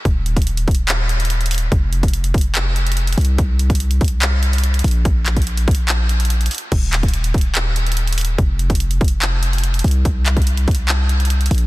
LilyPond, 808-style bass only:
\new Staff \with { instrumentName = "808-style bass" } { \clef bass \time 4/4 \key c \minor \tempo 4 = 144 ees,,1 | f,,2.~ f,,8 c,8~ | c,2.~ c,8 bes,,8~ | bes,,2.~ bes,,8 r8 |
ees,,1 | f,,2.~ f,,8 c,8~ | c,2.~ c,8 bes,,8 | }